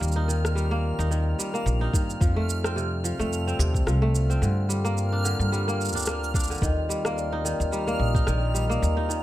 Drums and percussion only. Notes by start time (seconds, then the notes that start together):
0.03 shaker
0.08 shaker
0.12 shaker
0.30 shaker
0.45 cross-stick, shaker
0.57 shaker
1.00 shaker
1.12 shaker
1.40 shaker
1.55 shaker
1.67 shaker
1.94 kick, shaker
2.10 shaker
2.21 kick, shaker
2.49 shaker
2.64 cross-stick, shaker
2.78 shaker
3.05 shaker
3.21 shaker
3.33 shaker
3.48 shaker
3.60 shaker
3.74 kick, shaker
3.87 cross-stick, shaker
4.15 shaker
4.31 shaker
4.43 shaker
4.70 shaker
4.85 shaker
4.98 shaker
5.25 shaker
5.41 shaker
5.53 shaker
5.69 shaker
5.81 shaker
5.85 shaker
5.88 shaker
5.92 shaker
5.97 shaker
5.99 shaker
6.02 shaker
6.05 cross-stick, shaker
6.08 shaker
6.24 shaker
6.34 kick, shaker
6.39 shaker
6.44 shaker
6.47 shaker
6.51 shaker
6.54 shaker
6.57 shaker
6.60 kick, shaker
6.63 shaker
6.90 shaker
7.05 cross-stick, shaker
7.18 shaker
7.46 shaker
7.61 shaker
7.73 shaker
7.88 shaker
8.15 kick, shaker
8.27 cross-stick, shaker
8.55 shaker
8.71 shaker
8.83 shaker
9.11 shaker